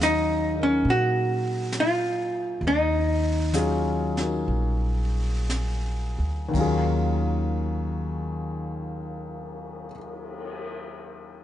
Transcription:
Already playing: D#2 F#3 C#4 G#4 F5
0.01 D#4, snare, hi-hat pedal
0.56 D#4 A#4
0.63 C#4
0.85 A#2, brush sweep
0.90 F#4
1.72 snare, hi-hat pedal
1.80 F4
2.61 D#2, brush sweep
2.68 D#4
3.53 F#3 C#4 F4 G#4, snare, hi-hat pedal
4.17 D#4 F#4 A#4, snare
4.48 A#1, brush sweep
5.50 snare, hi-hat pedal
6.18 D2
6.49 D#2 D#3
6.53 D#2 F#3 C#4, kick, ride
6.59 F4 G#4
7.27 cymbal swell

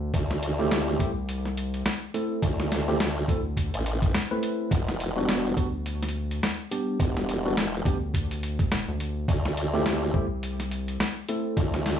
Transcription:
Already playing: D2
0.14 D2, kick, closed hi-hat
0.31 snare
0.43 closed hi-hat
0.59 A3 C4 E4 G4
0.71 snare, closed hi-hat
0.99 C2 A3 C4 E4 G4, kick, closed hi-hat
1.29 closed hi-hat
1.45 snare
1.57 closed hi-hat
1.74 closed hi-hat
1.86 snare, closed hi-hat
2.14 A3 C4 E4 A4, closed hi-hat
2.42 D2, kick, closed hi-hat
2.60 snare
2.72 snare, closed hi-hat
2.88 A3 C4 E4 G4
3.00 snare, closed hi-hat
3.28 D2 A3 C4 E4 A4, kick, closed hi-hat
3.57 kick, closed hi-hat
3.74 A1, closed hi-hat
3.86 closed hi-hat
4.02 kick, closed hi-hat
4.14 snare, closed hi-hat
4.31 A3 C4 E4 B4
4.43 closed hi-hat
4.71 E1, kick, closed hi-hat
4.88 snare
5.00 closed hi-hat
5.17 G3 B3 D4 F#4
5.29 snare, closed hi-hat
5.57 D2 G3 B3 D4 F#4, kick, closed hi-hat
5.86 closed hi-hat
6.03 snare, closed hi-hat
6.09 closed hi-hat
6.31 closed hi-hat
6.43 snare, closed hi-hat
6.71 G3 B3 D4 G4, closed hi-hat
7.00 E1, kick, closed hi-hat
7.17 snare
7.29 closed hi-hat
7.45 G3 B3 D4 F#4
7.57 snare, closed hi-hat
7.85 D2 G3 B3 D4 G4, kick, closed hi-hat
8.14 kick, closed hi-hat
8.31 closed hi-hat
8.43 closed hi-hat
8.59 kick, closed hi-hat
8.71 E1, snare, closed hi-hat
8.88 D2
9.00 closed hi-hat
9.28 D2, kick, closed hi-hat
9.45 snare
9.57 closed hi-hat
9.74 A3 C4 E4 G4
9.86 snare, closed hi-hat
10.14 C2 A3 C4 E4 G4, kick
10.43 closed hi-hat
10.60 snare, closed hi-hat
10.71 closed hi-hat
10.88 closed hi-hat
11.00 snare, closed hi-hat
11.29 A3 C4 E4 A4, closed hi-hat
11.57 D2, kick, closed hi-hat
11.74 snare
11.86 snare, closed hi-hat

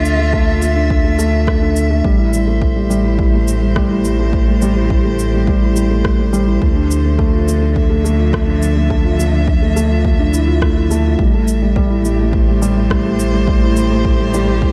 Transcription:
Already playing: D2 D3 A3 D4 F4 E5
0.05 shaker
0.18 A3
0.33 A3, kick
0.47 F4
0.62 A3, shaker
0.76 D4
0.90 kick
1.04 A3
1.18 A3, shaker
1.33 F4
1.47 A3, kick, cross-stick
1.62 D4
1.76 shaker
1.90 A3
2.04 A1 A2 G3, kick
2.19 E4
2.31 G3 C5, shaker
2.47 A3
2.62 kick
2.76 G3 G4
2.90 G3, shaker
3.04 E4
3.19 G3, kick
3.33 A3
3.48 shaker
3.62 G3
3.76 G3, kick, cross-stick
3.90 E4
4.05 G3, shaker
4.19 A3
4.33 kick
4.48 G3
4.62 G3, shaker
4.76 E4
4.90 G3, kick
5.05 A3
5.19 shaker
5.34 G3
5.47 G3, kick
5.62 E4
5.76 G3, shaker
5.90 A3
6.05 kick, cross-stick
6.19 G3
6.33 G3, shaker
6.47 E4
6.62 D2 D3 A3, kick
6.76 D4
6.80 F3
6.91 shaker
7.04 A3
7.18 A3, kick
7.33 F4
7.48 A3, shaker
7.61 D4
7.76 E5, kick
7.90 A3
8.04 A3, shaker
8.19 F4
8.33 A3, kick, cross-stick
8.47 D4
8.62 shaker
8.76 A3
8.90 A3, kick
9.04 F4
9.19 A3, shaker
9.33 D4
9.48 kick
9.62 A3
9.76 A3, shaker
9.91 F4
10.05 A3, kick
10.19 D4
10.33 E4, shaker
10.47 F4
10.62 A3, kick, cross-stick
10.77 E4
10.91 A3, shaker
11.05 F4
11.19 A1 A2 G3, kick
11.30 A3
11.48 shaker
11.62 G3
11.76 G3, kick
11.90 E4
11.98 G4
12.05 G3, shaker
12.20 A3
12.28 C5
12.33 kick
12.48 G3
12.62 G3, shaker
12.76 E4
12.90 G3, kick, cross-stick
13.06 A3
13.19 shaker
13.34 G3
13.48 G3, kick
13.63 E4
13.77 G3, shaker
13.91 A3
14.05 kick
14.20 G3
14.34 G3, shaker
14.48 E4
14.62 G3, kick

